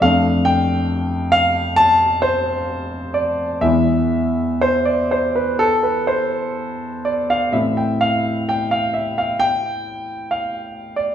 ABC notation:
X:1
M:4/4
L:1/16
Q:1/4=64
K:Am
V:1 name="Grand piano"
f2 g4 f2 a2 c4 d2 | e4 c d c B A B c4 d f | e g f2 g f e f g4 f3 d |]
V:2 name="Grand piano"
[F,,A,D]16 | [E,,^G,B,E]16 | [A,,E,CE]16 |]